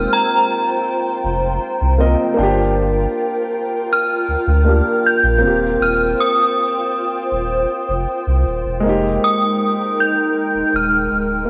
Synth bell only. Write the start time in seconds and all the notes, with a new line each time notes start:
0.13 A#5
3.93 F6
5.06 G6
5.82 F6
6.20 D#6
9.24 D#6
10.00 G6
10.76 F6